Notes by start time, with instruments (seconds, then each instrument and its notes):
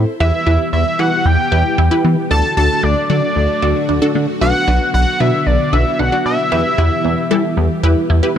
Already playing: synth pluck E4 A4 C5
0.20 analog synth bass E2, string machine E3 B3 G4, synth pluck E4 G4 B4, analog synth lead E5, synth arpeggio sound E5
0.46 analog synth bass E2, synth pluck E4 G4 B4, synth arpeggio sound E4
0.73 analog synth bass E2, synth arpeggio sound B3, analog synth lead E5
0.99 analog synth bass E3, synth arpeggio sound G3, synth pluck E4 G4 B4, analog synth lead F#5
1.25 analog synth bass E2, synth arpeggio sound E3, analog synth lead G5
1.52 analog synth bass E2, synth pluck E4 G4 B4, synth arpeggio sound E5
1.78 analog synth bass E2, synth arpeggio sound E4
1.91 synth pluck E4 G4 B4
2.05 analog synth bass E3, synth arpeggio sound B3
2.31 analog synth bass D2, string machine D3 A3 F#4, synth pluck D4 F#4 A4, synth arpeggio sound D5, analog synth lead A5
2.57 analog synth bass D2, synth pluck D4 F#4 A4, synth arpeggio sound D4, analog synth lead A5
2.83 analog synth bass D2, synth arpeggio sound A3, analog synth lead D5
3.10 analog synth bass D3, synth arpeggio sound F#3, synth pluck D4 F#4 A4, analog synth lead D5
3.36 analog synth bass D2, synth arpeggio sound D3
3.62 analog synth bass D2, synth pluck D4 F#4 A4, synth arpeggio sound D5
3.89 analog synth bass D2, synth arpeggio sound D4
4.02 synth pluck D4 F#4 A4
4.15 analog synth bass D3, synth arpeggio sound A3
4.41 analog synth bass B1, string machine D3 B3, synth pluck D4 F#4 B4, synth arpeggio sound D5, analog synth lead F#5
4.68 analog synth bass B1, synth pluck D4 F#4 B4, synth arpeggio sound D4
4.94 analog synth bass B1, synth arpeggio sound B3, analog synth lead F#5
5.20 analog synth bass B2, synth arpeggio sound F#3, synth pluck D4 F#4 B4, analog synth lead E5
5.46 analog synth bass B1, synth arpeggio sound D3, analog synth lead D5
5.73 analog synth bass B1, synth pluck D4 F#4 B4, synth arpeggio sound D5, analog synth lead E5
5.99 analog synth bass B1, synth arpeggio sound D4, analog synth lead F#5
6.12 synth pluck D4 F#4 D5
6.26 analog synth bass B2, synth arpeggio sound B3, analog synth lead E5
6.52 analog synth bass E2, string machine E3 G4, synth pluck E4 G4 B4, synth arpeggio sound E5
6.78 analog synth bass E2, synth arpeggio sound E4, synth pluck E4 G4 B4
7.05 analog synth bass E2, synth arpeggio sound B3
7.31 analog synth bass E3, synth arpeggio sound G3, synth pluck E4 G4 A4
7.57 analog synth bass E2, synth arpeggio sound E3
7.83 analog synth bass E2, synth pluck E4 G4 B4, synth arpeggio sound E5
8.10 analog synth bass E2, synth arpeggio sound E4
8.23 synth pluck E4 G4 B4